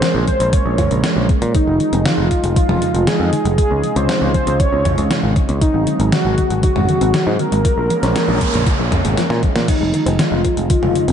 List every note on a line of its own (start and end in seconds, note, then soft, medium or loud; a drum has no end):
0.00 0.08 F3 loud
0.00 3.54 G#3 medium
0.00 1.53 A#3 medium
0.00 1.53 C#4 medium
0.00 0.25 C5 loud
0.00 snare loud
0.00 closed hi-hat medium
0.15 0.25 A#1 medium
0.15 0.21 F4 medium
0.28 0.38 F3 medium
0.28 0.55 C5 loud
0.28 kick medium
0.28 closed hi-hat medium
0.40 0.50 A#1 medium
0.40 0.51 A#3 medium
0.40 closed hi-hat medium
0.53 0.63 F3 medium
0.53 1.04 C#5 loud
0.53 kick loud
0.53 closed hi-hat medium
0.66 0.76 A#1 medium
0.66 0.72 A#3 medium
0.78 0.90 F4 loud
0.78 kick medium
0.78 closed hi-hat medium
0.78 mid tom medium
0.91 1.01 A#1 medium
0.91 1.02 C#4 medium
0.91 closed hi-hat medium
1.04 1.15 G#4 medium
1.04 snare loud
1.04 closed hi-hat medium
1.16 1.27 A#1 medium
1.16 1.29 G#4 medium
1.29 1.36 C#4 medium
1.29 kick loud
1.29 closed hi-hat medium
1.42 1.52 A#2 medium
1.42 1.52 F3 medium
1.42 closed hi-hat medium
1.55 1.65 D#3 medium
1.55 3.56 F3 medium
1.55 5.58 D#4 medium
1.55 2.07 D#4 loud
1.55 kick loud
1.55 closed hi-hat medium
1.67 1.78 F1 medium
1.67 1.74 G#3 medium
1.80 1.86 D#3 medium
1.80 closed hi-hat medium
1.93 2.03 F1 medium
1.93 2.05 C4 medium
1.93 closed hi-hat medium
2.06 2.12 D#3 medium
2.06 2.56 F4 loud
2.06 snare loud
2.06 closed hi-hat medium
2.18 2.28 F1 medium
2.18 2.25 D#4 medium
2.31 2.41 D#3 medium
2.31 kick medium
2.31 closed hi-hat medium
2.44 2.54 F1 medium
2.44 2.54 G#3 medium
2.44 closed hi-hat medium
2.56 2.67 D#3 medium
2.56 3.09 F4 loud
2.56 kick loud
2.56 closed hi-hat medium
2.69 2.79 F1 medium
2.69 2.75 G#3 medium
2.69 mid tom loud
2.82 2.88 D#3 medium
2.82 closed hi-hat medium
2.94 3.05 F1 medium
2.94 3.07 C4 medium
2.94 closed hi-hat medium
3.07 3.14 D#3 loud
3.07 3.58 G#4 loud
3.07 snare loud
3.07 closed hi-hat medium
3.20 3.30 F2 medium
3.20 3.26 D#4 medium
3.33 3.43 D#3 medium
3.33 closed hi-hat medium
3.45 3.56 F1 medium
3.45 3.56 G#3 medium
3.45 closed hi-hat medium
3.58 7.61 C3 medium
3.58 5.59 C#3 medium
3.58 3.69 F3 medium
3.58 9.64 G#3 medium
3.58 5.59 F4 medium
3.58 3.98 G#4 loud
3.58 kick loud
3.58 closed hi-hat medium
3.71 3.81 C#2 medium
3.71 3.77 C4 medium
3.83 3.90 F3 medium
3.83 closed hi-hat medium
3.96 4.06 C#2 medium
3.96 4.08 C#4 medium
3.96 4.34 C5 loud
3.96 closed hi-hat medium
4.09 4.15 F3 loud
4.09 snare loud
4.09 closed hi-hat medium
4.22 4.32 C#2 medium
4.22 4.28 F4 medium
4.34 4.45 F3 medium
4.34 4.61 C5 loud
4.34 kick medium
4.34 closed hi-hat medium
4.47 4.57 C#2 medium
4.47 4.58 C4 medium
4.47 closed hi-hat medium
4.60 4.70 F3 medium
4.60 5.11 C#5 loud
4.60 kick loud
4.60 closed hi-hat medium
4.72 4.83 C#2 medium
4.72 4.79 C4 medium
4.85 4.92 F3 medium
4.85 kick medium
4.85 closed hi-hat medium
4.85 mid tom loud
4.98 5.08 C#2 medium
4.98 5.10 C#4 medium
4.98 closed hi-hat medium
5.11 5.17 F3 loud
5.11 snare loud
5.11 closed hi-hat medium
5.23 5.34 G#1 medium
5.23 5.30 F4 medium
5.36 5.47 F3 medium
5.36 kick loud
5.36 closed hi-hat medium
5.49 5.59 C#2 medium
5.49 5.59 C4 medium
5.49 closed hi-hat medium
5.61 5.72 D#3 medium
5.61 7.63 F#3 medium
5.61 6.09 D#4 loud
5.61 kick loud
5.61 closed hi-hat medium
5.74 5.84 G#1 medium
5.74 5.80 G#3 medium
5.87 5.93 D#3 medium
5.87 closed hi-hat medium
6.00 6.10 G#1 medium
6.00 6.12 C4 medium
6.00 closed hi-hat medium
6.12 6.19 D#3 medium
6.12 6.60 F#4 loud
6.12 snare loud
6.12 closed hi-hat medium
6.25 6.35 G#1 medium
6.25 6.31 D#4 medium
6.38 6.48 D#3 medium
6.38 kick medium
6.38 closed hi-hat medium
6.50 6.61 G#1 medium
6.50 6.61 G#3 medium
6.50 closed hi-hat medium
6.63 6.74 D#3 medium
6.63 7.41 F#4 loud
6.63 kick loud
6.63 closed hi-hat medium
6.76 6.86 G#1 medium
6.76 6.82 G#3 medium
6.76 mid tom medium
6.89 6.95 D#3 medium
6.89 closed hi-hat medium
7.01 7.12 G#1 medium
7.01 7.13 C4 medium
7.01 closed hi-hat medium
7.14 7.20 D#3 loud
7.14 snare loud
7.14 closed hi-hat medium
7.27 7.37 G#2 medium
7.27 7.33 D#4 medium
7.39 7.50 D#3 medium
7.39 9.18 A#4 loud
7.39 closed hi-hat medium
7.52 7.62 G#1 medium
7.52 7.63 G#3 medium
7.52 closed hi-hat medium
7.65 7.75 F3 medium
7.65 9.66 A#3 medium
7.65 9.66 C#4 medium
7.65 kick loud
7.65 closed hi-hat medium
7.65 noise sweep medium
7.78 7.88 A#1 medium
7.78 7.84 A#3 medium
7.90 7.97 F3 medium
7.90 closed hi-hat medium
8.03 8.13 A#1 medium
8.03 8.15 C#4 medium
8.03 snare soft
8.03 closed hi-hat medium
8.16 8.22 F3 loud
8.16 snare loud
8.16 closed hi-hat medium
8.28 8.39 A#1 medium
8.28 8.35 F4 medium
8.41 8.52 F3 medium
8.41 kick medium
8.41 closed hi-hat medium
8.54 8.64 A#1 medium
8.54 8.64 A#3 medium
8.54 closed hi-hat medium
8.54 mid tom medium
8.67 8.77 F3 medium
8.67 kick loud
8.67 closed hi-hat medium
8.79 8.90 A#1 medium
8.79 8.86 A#3 medium
8.92 8.98 F3 medium
8.92 kick medium
8.92 closed hi-hat medium
8.92 mid tom medium
9.05 9.15 G#1 medium
9.05 9.17 C#4 medium
9.05 closed hi-hat medium
9.17 9.24 F3 loud
9.17 snare medium
9.17 closed hi-hat medium
9.30 9.40 A#2 medium
9.30 9.36 F4 medium
9.30 snare medium
9.43 9.53 F3 medium
9.43 kick loud
9.43 closed hi-hat medium
9.56 9.66 A#2 medium
9.56 9.66 A#3 medium
9.56 snare medium
9.56 closed hi-hat medium
9.68 9.79 D#3 medium
9.68 11.13 F3 medium
9.68 11.13 G#3 medium
9.68 10.21 D#4 loud
9.68 11.13 D#4 medium
9.68 kick loud
9.68 closed hi-hat loud
9.68 crash medium
9.81 9.91 F1 medium
9.81 9.87 G#3 medium
9.94 10.00 D#3 medium
9.94 closed hi-hat medium
10.06 10.17 F1 medium
10.06 10.18 C4 medium
10.06 closed hi-hat medium
10.19 10.25 D#3 loud
10.19 10.70 F4 loud
10.19 snare loud
10.19 closed hi-hat loud
10.32 10.42 F1 medium
10.32 10.38 D#4 medium
10.45 10.55 D#3 medium
10.45 kick medium
10.45 closed hi-hat medium
10.57 10.67 F1 medium
10.57 10.68 G#3 medium
10.57 closed hi-hat medium
10.70 10.80 D#3 medium
10.70 11.13 F4 medium
10.70 kick loud
10.70 closed hi-hat loud
10.83 10.93 F1 medium
10.83 10.89 G#3 medium
10.83 mid tom medium
10.95 11.02 D#3 medium
10.95 closed hi-hat medium
11.08 11.13 F1 medium
11.08 11.13 C4 medium
11.08 closed hi-hat medium